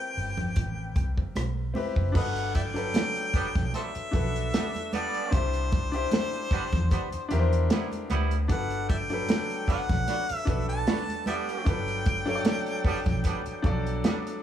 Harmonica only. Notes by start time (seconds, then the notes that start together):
Already playing: G5
2.16 B4 D#5 F#5
2.56 D5 E5 G5
3.75 A4 C5 E5
4.93 D5
5.33 C5
8.50 F#5
8.89 D5 E5 G5
9.69 F#5
10.37 E5
10.69 A5
11.27 D5 E5 G5